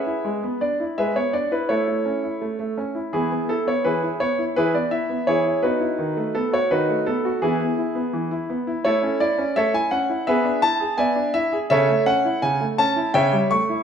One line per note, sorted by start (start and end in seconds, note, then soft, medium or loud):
0.00 0.58 G#4 soft
0.00 0.58 B4 soft
0.00 0.32 E5 medium
0.07 0.25 E4 soft
0.25 0.43 G#3 medium
0.43 0.62 B3 soft
0.61 0.81 D4 soft
0.61 0.83 D5 medium
0.80 0.99 E4 soft
0.98 1.15 G#3 soft
0.98 1.15 G#4 medium
0.98 1.15 B4 medium
0.98 1.16 E5 medium
1.16 1.35 B3 soft
1.16 1.34 C#5 medium
1.33 1.53 D4 soft
1.33 1.52 D5 medium
1.51 1.69 E4 soft
1.51 1.70 B4 medium
1.69 1.86 A3 medium
1.69 2.22 E4 medium
1.69 2.74 A4 medium
1.69 2.78 C#5 medium
1.88 2.07 A3 soft
2.05 2.25 C#4 soft
2.24 2.43 E4 soft
2.41 2.58 A3 soft
2.59 2.79 A3 soft
2.78 2.97 C#4 soft
2.95 3.13 E4 soft
3.13 3.31 E3 medium
3.13 3.30 B3 medium
3.13 3.47 E4 medium
3.13 3.49 G#4 medium
3.32 3.50 B3 soft
3.49 3.68 E4 soft
3.49 3.67 A4 medium
3.67 3.86 B3 soft
3.67 3.86 C#5 medium
3.85 4.03 E3 soft
3.85 4.02 E4 medium
3.85 4.19 G#4 medium
3.85 4.06 B4 medium
4.03 4.22 E4 soft
4.20 4.40 B3 soft
4.20 4.42 C#5 medium
4.39 4.56 E4 soft
4.56 4.74 E3 soft
4.56 4.74 E4 medium
4.56 4.74 G#4 medium
4.56 4.75 B4 medium
4.74 4.93 B3 soft
4.74 4.93 D5 medium
4.91 5.11 E4 soft
4.91 5.28 E5 medium
5.10 5.29 B3 soft
5.27 5.45 E3 soft
5.27 5.43 E4 medium
5.27 5.62 G#4 medium
5.27 5.63 C#5 medium
5.45 5.64 E4 soft
5.63 5.82 B3 soft
5.63 6.32 D#4 medium
5.63 6.31 F#4 medium
5.63 6.35 B4 medium
5.80 5.99 E4 soft
5.99 6.17 D#3 medium
6.17 6.36 A3 medium
6.35 6.54 B3 medium
6.35 6.53 A4 medium
6.53 6.70 F#4 medium
6.53 6.72 C#5 medium
6.71 6.89 D#3 medium
6.71 7.05 D#4 medium
6.71 7.05 F#4 medium
6.71 7.07 B4 medium
6.89 7.08 A3 soft
7.06 7.26 B3 medium
7.06 7.39 A4 medium
7.25 7.43 F#4 medium
7.42 7.60 E3 medium
7.42 7.59 B3 medium
7.42 7.77 E4 medium
7.42 8.45 G#4 medium
7.60 7.79 B3 soft
7.78 7.97 E4 soft
7.95 8.14 B3 medium
8.13 8.31 E3 medium
8.31 8.50 E4 soft
8.50 8.68 B3 medium
8.67 8.84 E4 medium
8.85 9.02 A3 medium
8.85 9.18 E4 medium
8.85 9.19 A4 medium
8.85 9.17 C#5 medium
9.03 9.21 C#4 medium
9.20 9.39 E4 medium
9.20 9.56 D5 medium
9.38 9.57 C#4 medium
9.56 9.74 A3 medium
9.56 9.73 A4 medium
9.56 9.73 C#5 medium
9.56 9.74 E5 medium
9.74 9.93 E4 medium
9.74 9.92 G#5 medium
9.91 10.10 C#4 medium
9.91 10.23 F#5 medium
10.09 10.27 E4 medium
10.27 10.45 B3 medium
10.27 10.61 G#4 medium
10.27 10.61 B4 medium
10.27 10.62 E5 medium
10.45 10.63 D4 soft
10.62 10.81 E4 medium
10.62 10.98 A5 loud
10.80 10.99 G#4 medium
10.98 11.15 B3 medium
10.98 11.32 D5 medium
10.98 11.32 E5 medium
10.98 11.34 G#5 medium
11.16 11.35 D4 medium
11.34 11.53 E4 medium
11.34 11.56 E5 loud
11.53 11.70 G#4 medium
11.70 11.88 C#3 medium
11.70 12.05 A4 medium
11.70 12.05 C#5 medium
11.70 12.03 E5 loud
11.89 12.08 A3 medium
12.06 12.26 C#4 medium
12.06 12.39 F#5 loud
12.25 12.44 E4 medium
12.42 12.60 C#3 medium
12.42 12.64 G#5 medium
12.61 12.80 A3 medium
12.78 12.98 C#4 medium
12.78 13.11 A5 loud
12.96 13.15 E4 medium
13.14 13.32 C#3 medium
13.14 13.49 C#5 medium
13.14 13.49 E5 medium
13.14 13.36 G5 loud
13.32 13.52 G3 medium
13.51 13.70 A3 medium
13.51 13.83 C#6 loud
13.69 13.83 E4 medium